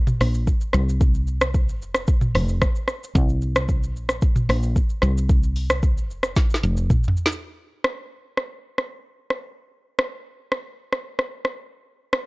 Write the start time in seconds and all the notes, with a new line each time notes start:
0.07 mid tom, shaker
0.21 A#1, cross-stick, open hi-hat, shaker
0.34 shaker
0.47 kick, shaker
0.61 shaker
0.73 C2, cross-stick, shaker
0.89 shaker
1.01 kick, shaker
1.15 shaker
1.27 shaker
1.41 cross-stick, shaker
1.54 kick, shaker
1.69 shaker
1.81 F1, shaker
1.95 cross-stick, shaker
2.07 kick, shaker
2.21 mid tom, shaker
2.35 F1, cross-stick, open hi-hat, shaker
2.49 shaker
2.62 kick, cross-stick, shaker
2.75 shaker
2.88 cross-stick, shaker
3.04 shaker
3.15 C2, kick, shaker
3.29 shaker
3.42 shaker
3.56 cross-stick, shaker
3.69 kick, shaker
3.83 shaker
3.95 A#1, shaker
4.09 cross-stick, shaker
4.22 kick, shaker
4.36 mid tom, shaker
4.49 A#1, cross-stick, open hi-hat, shaker
4.63 shaker
4.76 kick, shaker
4.90 shaker
5.02 C2, cross-stick, shaker
5.18 shaker
5.29 kick, shaker
5.43 shaker
5.56 open hi-hat, shaker
5.70 cross-stick, shaker
5.83 kick, shaker
5.98 shaker
6.10 F1, shaker
6.23 cross-stick, shaker
6.36 kick, snare, shaker
6.50 shaker
6.54 snare
6.63 F1, shaker
6.77 shaker
6.90 kick, mid tom, shaker
7.04 shaker
7.08 floor tom
7.17 shaker
7.26 snare
7.32 shaker
7.84 cross-stick
8.37 cross-stick
8.78 cross-stick
9.30 cross-stick
9.99 cross-stick
10.52 cross-stick
10.93 cross-stick
11.19 cross-stick
11.45 cross-stick
12.13 cross-stick